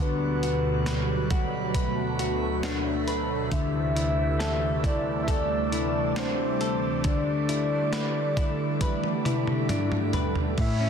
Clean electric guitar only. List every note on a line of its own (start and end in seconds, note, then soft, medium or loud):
0.00 3.50 D3 medium
0.00 0.42 F#4 medium
0.00 0.87 A4 medium
0.43 1.30 F#4 medium
0.87 1.74 B4 medium
1.31 2.18 F#4 medium
1.75 3.06 B4 medium
2.19 3.60 F#4 medium
2.63 3.60 D4 medium
3.08 3.60 B4 medium
3.51 7.03 D3 medium
3.96 4.83 E4 medium
4.39 5.27 A4 medium
4.84 5.72 E4 medium
5.28 6.60 A4 medium
5.72 7.48 E4 medium
6.16 7.52 D4 medium
6.61 7.92 A4 medium
7.04 10.57 D3 medium
7.49 8.37 E4 medium
7.93 8.80 B4 medium
8.37 9.25 E4 medium
8.81 10.12 B4 medium
9.25 10.90 E4 medium
9.70 10.66 D4 medium
10.14 10.66 B4 soft
10.58 10.90 A2 medium
10.80 10.90 C#4 medium